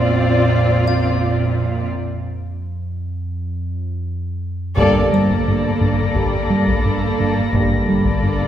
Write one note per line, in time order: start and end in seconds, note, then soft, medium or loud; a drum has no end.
0.00 1.87 A#1 medium
0.00 1.88 F2 medium
0.00 1.88 A#2 medium
0.00 1.51 C4 soft
0.00 1.87 C4 medium
0.00 1.87 F4 medium
0.00 1.52 C5 soft
0.00 1.87 D5 medium
0.00 0.13 F5 soft
0.87 1.88 F5 soft
1.93 4.74 F2 medium
4.77 7.50 G1 medium
4.77 4.98 G2 loud
4.77 7.50 G2 medium
4.77 5.09 G3 medium
4.77 5.09 A#3 medium
4.77 7.50 A#3 medium
4.77 7.50 A4 medium
4.77 7.49 D5 medium
4.77 8.48 A#6 soft
4.77 taiko medium
5.13 5.34 G3 medium
5.13 7.16 C5 soft
5.30 taiko medium
5.46 5.68 G2 medium
5.46 8.48 B5 soft
5.81 6.02 G2 medium
5.81 taiko medium
6.15 6.36 G2 soft
6.15 6.40 G3 soft
6.15 6.39 A#3 soft
6.15 taiko medium
6.50 6.71 G3 soft
6.67 taiko medium
6.85 7.06 G2 medium
7.20 7.41 G2 medium
7.53 8.48 G1 soft
7.53 8.48 G1 medium
7.53 7.75 G2 medium
7.53 8.48 G2 soft
7.53 7.78 G3 soft
7.53 8.48 A#3 medium
7.53 7.78 A#3 soft
7.53 8.48 A4 soft
7.53 8.48 D5 medium
7.53 taiko medium
7.89 8.09 G3 medium
8.05 taiko medium
8.23 8.44 G2 medium